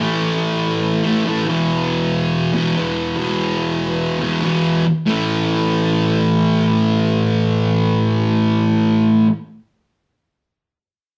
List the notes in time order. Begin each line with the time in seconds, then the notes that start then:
0.00 A2 E3 A3
1.03 E3 A3
1.07 A2
1.24 A2 E3 A3
1.45 E2 B2
1.49 E3
2.53 E2 B2 E3
2.76 E2 B2 E3
3.16 E2 B2
3.20 E3
4.20 E2 B2 E3
4.42 E2 B2 E3
5.06 A2 E3 A3